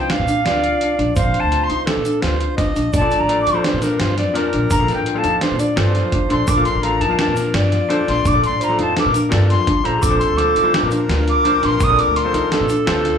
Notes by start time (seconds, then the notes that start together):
Already playing: C2 C4 D#4 F4 C5
0.00 G5
0.10 D4 F5, snare, closed hi-hat
0.19 A#2
0.27 D4, closed hi-hat, shaker
0.45 D2 F4 D5, snare, closed hi-hat
0.63 F4, closed hi-hat
0.72 C2
0.81 D4, closed hi-hat
0.98 A#1 D4, closed hi-hat
1.15 A#1 C4 C5 F5, kick, closed hi-hat, shaker
1.34 closed hi-hat
1.39 D2 A5
1.52 F4, closed hi-hat
1.63 C6
1.70 C2 D#4, closed hi-hat
1.86 D4 A4, snare, closed hi-hat
1.97 A#2
2.05 D4, closed hi-hat, shaker
2.22 D2 F4 C5, snare, closed hi-hat
2.40 F4, closed hi-hat
2.49 C2
2.57 D4 D#5, kick, snare, closed hi-hat, shaker
2.76 A#1 D4, closed hi-hat, shaker
2.93 A#1 D4 D5 A5, kick, closed hi-hat, shaker
3.00 A#2 F3 A4 D5
3.11 closed hi-hat, shaker
3.19 A1 A#5
3.27 A#2 F3 F4 A4 D5, closed hi-hat
3.41 D6
3.46 F2 D#4, closed hi-hat, shaker
3.53 A#2 F3 A4 C5
3.64 D4 C5, snare, closed hi-hat
3.74 A#2
3.82 D4 A#4, snare, closed hi-hat, shaker
4.00 G2 F4 C5, snare, closed hi-hat
4.17 F4 D5, snare, closed hi-hat
4.27 F2
4.34 A#2 F3 D4 A#4 D5, snare, closed hi-hat
4.53 A#1 D4, closed hi-hat
4.70 A#1 D4 A#5, kick, closed hi-hat, shaker
4.78 A#2 F3 A4 F5
4.88 snare, closed hi-hat, shaker
4.94 G5
4.98 A1
5.06 F4, closed hi-hat
5.14 A#2 F3 A4 F5 A5
5.22 F2 A#2 F3 D#4 A4 F5, closed hi-hat, shaker
5.41 D4 C5, snare, closed hi-hat
5.51 A#2
5.59 D4 D5, closed hi-hat, shaker
5.76 G2 A#2 F3 F4 A4 C5 D5, snare, closed hi-hat
5.95 F4, snare, closed hi-hat
6.04 F2
6.12 D4, kick, closed hi-hat
6.29 A#1 A#2 F3 D4 A4 D5 C6, closed hi-hat
6.47 A#1 D4 A#4 D6, kick, closed hi-hat, shaker
6.56 A#2 F3 A4 F5
6.64 C6, closed hi-hat, shaker
6.75 A1
6.82 A#2 F3 F4 A4 F5 A#5, closed hi-hat
7.00 F2 D#4 A5, closed hi-hat
7.09 A#2 F3 A#4 F5
7.18 D4 A5, snare, closed hi-hat
7.28 A#2
7.36 D4, snare, closed hi-hat, shaker
7.54 G2 F4 D5, snare, closed hi-hat
7.72 F4, snare, closed hi-hat
7.81 F2
7.88 A#2 F3 D4 A4 C5, closed hi-hat
8.07 A#1 D4 C6, snare, closed hi-hat
8.25 A#1 D4 D6, kick, closed hi-hat, shaker
8.32 A#2 F3 A4 D5
8.44 C6, closed hi-hat, shaker
8.52 A1
8.61 F4 C5 A#5, closed hi-hat, shaker
8.68 A#2 F3 A4 D5
8.77 F2 A#2 F3 D#4 A4 F5, closed hi-hat
8.81 A5
8.96 D4 A#4 D6, snare, closed hi-hat
9.06 A#2
9.14 D4, closed hi-hat, shaker
9.29 G2 A#2 F3 F4 A4 D5, snare, closed hi-hat
9.50 F4 C6, snare, closed hi-hat
9.59 F2
9.67 D4, kick, closed hi-hat
9.83 A#1 A#2 F3 D4 A4 C5 A#5, closed hi-hat
9.97 G#4
10.01 A#1 C4 A4 D6, kick, closed hi-hat, shaker
10.09 A#2 F3 A4 C5
10.18 C6, closed hi-hat, shaker
10.30 D2
10.36 A#2 F3 F4 A4 C5 D6, closed hi-hat
10.56 C2 D#4, closed hi-hat, shaker
10.63 A#2 F3 F4 C5
10.74 D4 A#4, snare, closed hi-hat
10.83 A#2
10.91 D4, closed hi-hat, shaker
11.09 D2 F4, snare, closed hi-hat
11.27 F4 D6, closed hi-hat
11.36 C2
11.44 A#2 F3 D4 F4 C5, closed hi-hat
11.62 A#1 D4 C6, snare, closed hi-hat
11.80 A#1 C4 D#6, kick, closed hi-hat, shaker
11.88 A#2 F3 A4 D5
11.99 D6, closed hi-hat, shaker
12.07 D2
12.16 F4 C6, closed hi-hat
12.24 A#2 F3 A4 C5
12.33 C2 A#2 F3 D#4 A4 C5, closed hi-hat, shaker
12.51 D4 A4, snare, closed hi-hat
12.61 A#2
12.69 D4, closed hi-hat, shaker
12.86 D2 A#2 F3 F4 A4 C5, snare, closed hi-hat
13.04 F4, snare, closed hi-hat
13.14 C2